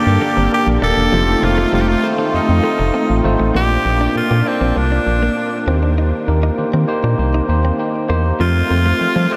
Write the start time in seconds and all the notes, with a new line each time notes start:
Already playing: G2 D3 A#3 D4 G4
0.06 G2
0.21 A#3 D4 G4
0.37 G1 C4
0.52 A#3 D4 G4
0.67 A#1
0.82 D#1 A#3 D4 G4 A4
0.97 E1
1.12 F1 D#3 F3 A3 C4 D#4 F4 C5
1.42 F1 A3 C4 D#4 F4 C5, muted clean electric guitar stroke
1.58 A3
1.73 F1 G3 A3 C4 D#4 F4 C5
1.81 G4
1.88 F4, muted clean electric guitar stroke
2.03 A3 C4 D#4 F4 C5
2.18 C4
2.33 F2 A3 C4 D#4 F4 C5, muted clean electric guitar stroke
2.49 F2
2.63 A3 C4 D#4 F4 C5
2.79 F1 C4
2.94 A3 C4 D#4 F4 C5
3.10 A1
3.24 G#1 A3 C4 D#4 F4 C5, muted clean electric guitar stroke
3.40 A1 A3
3.54 A#1 A#2 A#3 D4 F4 G4 D5
3.85 A#1 A#3 D4 F4 D5, muted clean electric guitar stroke
4.01 D4
4.15 A#2 A#3 D4 F4 D5
4.30 A#2 A#3
4.45 A#3 C4 D4 F4 D5, muted clean electric guitar stroke
4.61 A#1 C4
4.75 C2 A#3 D4 F4 D5
4.92 D4
5.06 A#1 A#3 D4 F4 D5, muted clean electric guitar stroke
5.23 A#3
5.36 A#3 D4 F4 D5, muted clean electric guitar stroke
5.67 D#2 D#3 A#3 C4 D#4 F#4 C5
5.74 G4
5.83 D4
5.98 D#4
6.27 D#2 A#3 D#4 G4 A#4, muted clean electric guitar stroke
6.43 D#4
6.57 D#3 A#3 D#4 G4 C5
6.73 D#3 C4
6.87 A#3 D#4 G4 C5, muted clean electric guitar stroke
7.03 A#2 D4
7.18 C2 A#3 D#4 G4 C5
7.34 D#4
7.48 D#2 A#3 D#4 G4 C5 D#5, muted clean electric guitar stroke
7.65 C4
7.78 A#3 D#4 G4 C5 G5
7.94 G5
8.08 E2 A#3 D#4 G4 C5 A#5
8.39 F2 F3 A3 C4 F4 C5
8.69 F2 A3 C4 F4 C5, muted clean electric guitar stroke
8.86 A3
9.00 F3 A3 C4 F4 C5
9.16 F3 G3
9.30 A3 C4 D4 F4 C5, muted clean electric guitar stroke